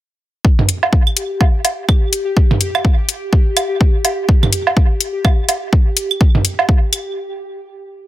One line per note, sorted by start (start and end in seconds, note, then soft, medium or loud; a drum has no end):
0.45 7.17 G4 medium
0.45 kick loud
0.59 mid tom medium
0.69 closed hi-hat medium
0.83 low woodblock medium
0.93 kick loud
1.07 claves medium
1.17 closed hi-hat medium
1.41 kick loud
1.41 low woodblock medium
1.65 closed hi-hat medium
1.65 low woodblock medium
1.89 kick loud
1.89 claves medium
2.13 closed hi-hat medium
2.37 kick loud
2.51 mid tom medium
2.61 closed hi-hat medium
2.75 claves medium
2.75 low woodblock medium
2.85 kick loud
3.09 closed hi-hat medium
3.33 kick loud
3.57 closed hi-hat medium
3.57 claves medium
3.57 low woodblock medium
3.81 kick loud
4.05 closed hi-hat medium
4.05 low woodblock medium
4.29 kick loud
4.43 mid tom medium
4.43 claves medium
4.53 closed hi-hat medium
4.67 low woodblock medium
4.77 kick loud
5.01 closed hi-hat medium
5.25 kick loud
5.25 claves medium
5.25 low woodblock medium
5.49 closed hi-hat medium
5.49 low woodblock medium
5.73 kick loud
5.97 closed hi-hat medium
6.11 claves medium
6.21 kick loud
6.35 mid tom medium
6.45 closed hi-hat medium
6.59 low woodblock medium
6.69 kick loud
6.93 closed hi-hat medium
6.93 claves medium